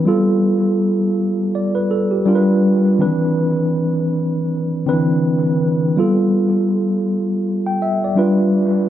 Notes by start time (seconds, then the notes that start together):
0.05 G3 B3 F4 A4
1.55 D5
1.75 B4
1.91 A4
2.11 G4
2.26 G3 D4 F4 A#4
2.35 B4
2.99 D#3 C4 D4 B4
3.05 E3
4.86 D3 C4 D4 B4
4.92 E3
5.96 G3 B3 F4 A4
7.66 G5
7.82 E5
8.04 D5
8.15 G3 D4 F4 B4